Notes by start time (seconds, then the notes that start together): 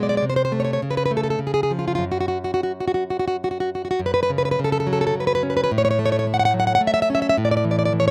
Already playing: B2 F#3 G#3
0.03 D5
0.09 D5
0.17 D5
0.22 C3
0.30 C5
0.36 C5
0.45 C5
0.52 A3
0.60 C#5
0.65 C#5
0.73 C#5
0.82 C#3
0.91 B4
0.97 B4
1.06 B4
1.11 A3
1.17 A4
1.23 A4
1.30 A4
1.39 C#3
1.47 G#4
1.54 G#4
1.63 G#4
1.71 F3
1.79 F4
1.88 F4
1.95 F#2 F4
2.12 F#4
2.21 F#4
2.28 F#4
2.44 F#4
2.54 F#4
2.63 F#4
2.80 F#4
2.88 F#4
2.94 F#4
3.10 F#4
3.19 F#4
3.28 F#4
3.44 F#4
3.51 F#4
3.60 F#4
3.75 F#4
3.85 F#4
3.91 F#4
3.99 F#2
4.06 B4
4.14 B4
4.23 B4
4.30 C#3
4.38 B4
4.45 B4
4.51 B4
4.59 C#3
4.64 A4
4.72 A4
4.80 A4
4.87 F#3
4.93 A4
5.01 A4
5.07 A4
5.15 C#3
5.20 B4
5.27 B4
5.35 B4
5.43 C#4
5.50 B4
5.57 B4
5.64 B4
5.71 A2
5.78 C#5
5.85 C#5
5.91 C#5
5.99 A3
6.06 C#5
6.12 C#5
6.19 C#5
6.27 A3
6.34 F#5
6.39 F#5
6.45 F#5
6.54 F#3
6.60 F#5
6.67 F#5
6.75 F#5
6.81 A3
6.87 E5
6.94 E5
7.02 E5
7.10 C#4
7.15 E5
7.22 E5
7.29 E5
7.37 A2
7.45 D5
7.51 D5
7.57 D5
7.64 E3
7.71 D5
7.79 D5
7.85 D5
7.93 E3
8.00 C#5
8.08 C#5